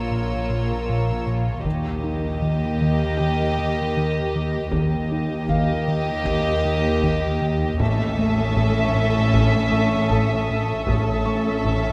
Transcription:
Already playing: A#1 A#2 A#3 F4 C#5 A#5 C6 E6
0.11 A#2
0.50 A#2
0.90 A#2
1.27 A#2
1.64 D#2 D#3 A#3 G4 D#5, taiko
2.04 D#4
2.42 D#3
2.82 D#3
3.17 D#3 G4 G5
3.59 D#3
3.97 D#3
4.35 D#3
4.71 D#2 D#3 A#3 G4 D#5, taiko
5.12 D#4
5.49 D#3 F5, taiko
5.88 D#3
6.25 D#3 A#6, taiko
6.65 D#3
7.03 D#3, taiko
7.42 D#3
7.79 A1 A2 C#4 A4 E5 C#6 D#6 E6, taiko
8.19 A3
8.57 A2, taiko
8.95 A2
9.34 A2, taiko
9.73 A2
10.10 A2 A4 A5, taiko
10.50 A2
10.88 A1 A2 C#4 A4 E5, taiko
11.25 A3 C#6
11.53 E6
11.65 A2, taiko

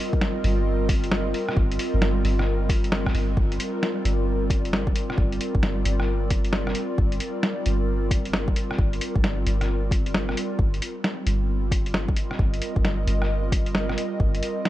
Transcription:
Already playing: G3 C4 F4 A#4 D#5
0.13 kick
0.21 snare
0.44 G1, open hi-hat
0.89 kick, open hi-hat
1.04 closed hi-hat
1.12 snare
1.34 open hi-hat
1.49 cross-stick
1.57 G1, kick
1.72 closed hi-hat
1.79 open hi-hat
1.94 G1
2.02 snare
2.24 G1, open hi-hat
2.39 cross-stick
2.69 kick, open hi-hat
2.84 closed hi-hat
2.92 snare
3.06 kick, cross-stick
3.14 G1, open hi-hat
3.37 G1, kick
3.52 closed hi-hat
3.60 D5, closed hi-hat
3.83 snare
4.05 G1, closed hi-hat
4.50 kick, closed hi-hat
4.65 closed hi-hat
4.73 snare
4.87 kick
4.96 closed hi-hat
5.10 cross-stick
5.18 G1, kick
5.32 closed hi-hat
5.41 closed hi-hat
5.55 G1, kick
5.63 snare
5.85 G1, closed hi-hat
6.00 cross-stick
6.30 kick, closed hi-hat
6.45 closed hi-hat
6.53 snare
6.67 cross-stick
6.75 closed hi-hat
6.98 G1, kick
7.12 closed hi-hat
7.20 closed hi-hat
7.43 snare
7.66 G1, closed hi-hat
8.11 kick, closed hi-hat
8.25 closed hi-hat
8.33 snare
8.48 kick
8.56 closed hi-hat
8.71 cross-stick
8.78 G1, kick
8.93 closed hi-hat
9.01 closed hi-hat
9.16 G1, kick
9.24 snare
9.46 G1, closed hi-hat
9.61 cross-stick, closed hi-hat
9.91 kick, closed hi-hat
10.06 closed hi-hat
10.14 snare
10.29 cross-stick
10.37 closed hi-hat
10.58 G1 G3, kick
10.74 closed hi-hat
10.80 C4, closed hi-hat
11.04 F4, snare
11.27 G1, closed hi-hat
11.71 kick, closed hi-hat
11.86 closed hi-hat
11.92 A#4 D#5, snare
12.09 kick
12.16 closed hi-hat
12.31 cross-stick
12.39 G1, kick
12.54 closed hi-hat
12.62 closed hi-hat
12.76 G1, kick
12.85 snare
13.07 G1, closed hi-hat
13.22 cross-stick
13.52 kick, closed hi-hat
13.66 closed hi-hat
13.75 snare
13.89 cross-stick
13.98 closed hi-hat
14.20 G1, kick
14.35 closed hi-hat
14.43 closed hi-hat
14.65 snare

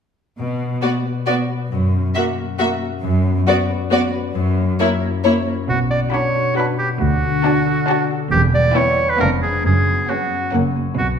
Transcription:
0.38 B2
0.61 B3
0.82 B3 F#4 D5
1.06 B4
1.26 B3 F#4 D5
1.50 B4
1.71 F#2
1.94 A#3
2.15 A#3 F#4 E5
2.38 A#4
2.59 A#3 F#4 E5
2.82 A#4
3.03 F#2
3.25 B3
3.47 B3 F#4 D5
3.69 B4
3.91 B3 F#4 D5
4.13 B4
4.35 F#2
4.57 A#3
4.79 A#3 E4 C#5
5.01 A#4
5.24 A#3 E4 C#5
5.46 A#4
5.68 B1 B2 F#4
5.91 B3 D5
6.13 D4 F#4 C#5 B5
6.35 F#4
6.56 D4 F#4 B4 B5
6.79 F#4 G4
7.00 D2 D3 F#4
7.23 D4
7.44 D4 F#4 A5
7.66 A4
7.88 D4 F#4 D5 A5
8.10 A4
8.31 E1 E2 G4
8.54 G3 D5
8.75 B3 E4 C#5 G5
8.98 B4
9.10 B4
9.18 F1 F2 B3 D4 A#4 F5
9.42 D4 G#4 B4
9.64 F#1 F#2 G#4
9.87 B3
10.08 B3 C#4 F#4 F#5
10.31 F#4
10.53 F#1 F#2 A#3 C#4 F#5
10.76 C#4 F#4
10.98 B1 B2 F#4

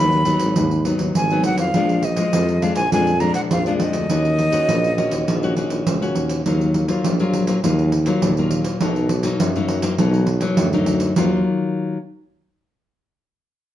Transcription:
Already playing: D#2 D#3 F#3 B3 D#4 B5
0.12 pandeiro
0.25 F#3 B3 D#4, pandeiro
0.39 G#1, pandeiro
0.56 D#2 G#2, pandeiro
0.71 pandeiro
0.85 F#3 B3 D#4, pandeiro
0.99 D#2, pandeiro
1.15 G#1 D#3 G#5, pandeiro
1.30 F#3 B3 D#4, pandeiro
1.44 F#5, pandeiro
1.58 F2 F5, pandeiro
1.74 A#1 A#2 F3 G#3 D4, pandeiro
1.89 pandeiro
2.03 D#5, pandeiro
2.16 F3 G#3, pandeiro
2.33 F2, pandeiro
2.49 pandeiro
2.62 F3 G#3 D4 F5, pandeiro
2.75 A#1 G#5, pandeiro
2.92 F2 A#2 F3 G#3 D4 G#5, pandeiro
3.07 pandeiro
3.20 F3 G#3 D4 A#5, pandeiro
3.34 F#5, pandeiro
3.51 A#1 F2 F5, pandeiro
3.66 F3 G#3 D4 F5, pandeiro
3.80 D#5, pandeiro
3.93 D2, pandeiro
4.10 D#2 D#3 A#3 C#4 F#4, pandeiro
4.25 pandeiro
4.39 pandeiro
4.52 A#3 C#4 F#4, pandeiro
4.68 A#1 A#2, pandeiro
4.84 pandeiro
4.97 A#3 C#4 F#4, pandeiro
5.11 D#2, pandeiro
5.28 A#1 D#3, pandeiro
5.43 A#3 C#4 F#4, pandeiro
5.57 A#3 C#4 F#4, pandeiro
5.70 A#1, pandeiro
5.86 C#2 A#2, pandeiro
6.01 A#3 C#4 F#4, pandeiro
6.15 D#2, pandeiro
6.29 pandeiro
6.46 D#2 D#3 F#3 A#3 F4, pandeiro
6.61 pandeiro
6.74 pandeiro
6.88 F#3 A#3 F4, pandeiro
7.04 A#1 A#2, pandeiro
7.19 F#3 A#3 F4, pandeiro
7.33 pandeiro
7.47 F#3 A#3 F4, pandeiro
7.63 D#2 D#3 F#3 A#3 F4, pandeiro
7.79 pandeiro
7.92 pandeiro
8.06 F#3 A#3 F4, pandeiro
8.22 D#2 A#2, pandeiro
8.37 F#3 A#3 F4, pandeiro
8.51 pandeiro
8.64 pandeiro
8.80 B1 B2 F#3 A#3 D#4, pandeiro
8.96 pandeiro
9.09 pandeiro
9.23 F#3 A#3 D#4, pandeiro
9.40 F#2, pandeiro
9.56 F#3 A#3 D#4, pandeiro
9.68 pandeiro
9.82 F#3 A#3 D#4, pandeiro
9.98 B1 B2 F#3 A#3 D#4, pandeiro
10.14 pandeiro
10.27 pandeiro
10.41 F#3 A#3 D#4, pandeiro
10.57 D2 F#2, pandeiro
10.73 F#3 A#3 D#4, pandeiro
10.86 pandeiro
11.00 pandeiro
11.16 D#2 D#3 F#3 A#3 F4, pandeiro

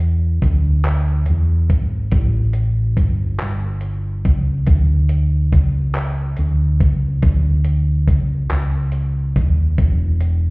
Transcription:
Already playing: E2
0.42 D2, kick, closed hi-hat
0.84 clap, closed hi-hat
1.26 E2, closed hi-hat
1.70 G#1, kick, closed hi-hat
2.12 A1, kick, closed hi-hat
2.53 closed hi-hat
2.97 G1, kick, closed hi-hat
3.39 G1, clap, closed hi-hat
3.81 closed hi-hat
4.25 C#2, kick, closed hi-hat
4.67 D2, kick, closed hi-hat
5.09 closed hi-hat
5.53 C#2, kick, closed hi-hat
5.94 clap, closed hi-hat
6.37 D2, closed hi-hat
6.80 C#2, kick, closed hi-hat
7.22 D2, kick, closed hi-hat
7.65 closed hi-hat
8.08 C#2, kick, closed hi-hat
8.50 C#2, clap, closed hi-hat
8.92 closed hi-hat
9.36 D#2, kick, closed hi-hat
9.78 E1, kick, closed hi-hat
10.21 closed hi-hat

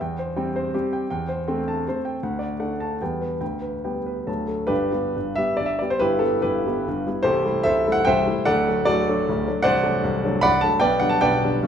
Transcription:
0.01 E2 G5
0.19 C5
0.36 G3 C4 G5
0.56 C5
0.74 G3 C4 G4
0.93 G5
1.10 E2 G5
1.29 C5
1.48 A3 C4 G5
1.68 A5
1.88 A3 C4 C5
2.05 G5
2.23 D2 F#5
2.39 D5
2.60 A3 D4 F#5
2.80 A5
3.02 E2 G3 B3 G5
3.21 B4
3.41 D2 G5
3.61 B4
3.84 G3 B3 G5
4.06 B4
4.27 D2 F#3 A3 A5
4.48 A4
4.67 G1 G2 D4 G4 B4
4.92 G3 B3 G4
5.16 G1 G2
5.36 G3 B3 G4 E5
5.57 G1 G2 D5
5.66 E5
5.79 G3 B3 G4 D5
5.90 C5
5.99 G1 G2 E4 G4 B4
6.19 G3 B3 E4 A4
6.42 G1 G2 E4 G4 B4
6.67 G3 B3 E4
6.88 G1 G2
7.07 G3 B3 E4
7.23 C1 C2 G4 A4 C5
7.44 G3 A3 E4
7.63 C1 C2 A4 C5 E5
7.87 G3 A3 E4
7.92 F#5
8.05 C1 C2 C5 E5 G5
8.27 G3 A3 E4
8.45 D1 D2 A4 D5 F#5
8.68 F#3 A3
8.85 D1 D2 F#4 A4 D5
9.09 F#3 A3 D4
9.28 D1 D2
9.48 F#3 A3 D4
9.62 C1 C2 C5 D5 F#5
9.83 F#3 A3 D4
10.04 C1 C2
10.24 F#3 A3 D4
10.41 C1 C2 D5 F#5 B5
10.61 F#3 A3 D4 A5
10.80 B1 B2 B4 D5 G5
11.00 D3 G3 D4 F#5
11.09 A5
11.21 B1 B2 B4 D5 G5
11.44 D3 G3 D4
11.62 B1 B2

